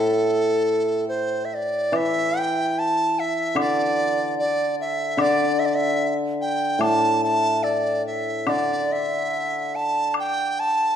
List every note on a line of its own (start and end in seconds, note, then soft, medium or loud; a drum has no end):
0.00 2.33 A2 medium
0.00 1.08 A4 medium
1.09 1.46 C5 medium
1.45 1.56 E5 medium
1.54 1.98 D5 medium
1.92 4.36 E3 medium
1.92 2.40 E5 medium
1.92 high woodblock soft
2.38 2.80 G5 medium
2.79 3.21 A5 medium
3.19 3.57 E5 medium
3.55 5.16 D3 medium
3.55 high woodblock medium
3.60 4.35 D5 medium
4.39 4.76 D5 medium
4.81 5.23 E5 medium
5.17 6.80 D3 medium
5.17 5.61 D5 medium
5.17 high woodblock medium
5.59 5.67 E5 medium
5.65 5.77 D5 medium
5.75 6.14 E5 medium
6.41 6.83 G5 medium
6.79 8.46 A2 medium
6.79 7.22 A5 medium
6.79 high woodblock medium
7.24 7.65 A5 medium
7.63 8.05 D5 medium
7.63 low woodblock soft
8.07 8.51 E5 medium
8.47 10.96 D3 medium
8.47 8.94 D5 medium
8.47 high woodblock medium
8.92 9.77 E5 medium
9.75 10.15 A5 medium
10.14 high woodblock medium
10.19 10.61 G5 medium
10.60 10.96 A5 medium